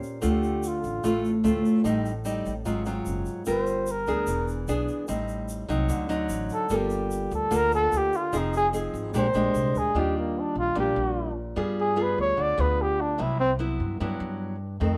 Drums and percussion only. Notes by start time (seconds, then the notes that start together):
0.03 shaker
0.22 shaker
0.43 shaker
0.63 shaker
0.84 shaker
1.04 shaker
1.25 shaker
1.45 shaker
1.65 shaker
1.85 shaker
2.05 shaker
2.25 shaker
2.46 shaker
2.65 shaker
2.85 shaker
3.06 shaker
3.25 shaker
3.46 shaker
3.67 shaker
3.87 shaker
4.07 shaker
4.27 shaker
4.48 shaker
4.68 shaker
4.88 shaker
5.08 shaker
5.28 shaker
5.49 shaker
5.70 shaker
5.89 shaker
6.10 shaker
6.29 shaker
6.49 shaker
6.69 shaker
6.90 shaker
7.11 shaker
7.31 shaker
7.52 shaker
7.72 shaker
7.92 shaker
8.13 shaker
8.33 shaker
8.53 shaker
8.74 shaker
8.94 shaker
9.14 shaker
9.34 shaker
9.55 shaker
9.75 shaker